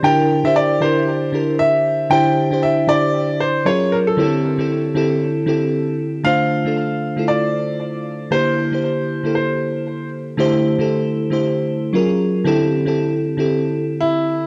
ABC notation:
X:1
M:4/4
L:1/16
Q:"Swing 16ths" 1/4=116
K:Dm
V:1 name="Grand piano"
g3 e d2 c4 z2 e4 | g4 e2 d4 c2 ^c2 ^A =A- | A12- A2 z2 | f8 d8 |
c8 c6 z2 | z16 | z12 E4 |]
V:2 name="FM electric piano"
[D,DEGB]2 z [D,DEGc]2 z [D,DEGB]3 z [D,DEGB]4- [D,DEGB] z | [D,DEGc]2 z [D,DEGc]2 z [D,DEGc]6 [^F,^C^E^G^A]3 z | [D,CEGA]2 z [D,CEGA]2 z [D,CEGA]3 z [D,CEGA]4- [D,CEGA] z | [D,A,DFc]2 z [D,A,DFA]3 z [D,A,EFA]6 z3 |
[D,B,EGc]2 z [D,B,EGc]3 z [D,B,EGA]6 z3 | [D,A,EGc]2 z [D,A,EGA]3 z [D,A,EGc]4- [D,A,EGc] [^F,^C^E^G^A]3 z | [D,CEGA]2 z [D,CEGA]3 z [D,CEGA]6 z3 |]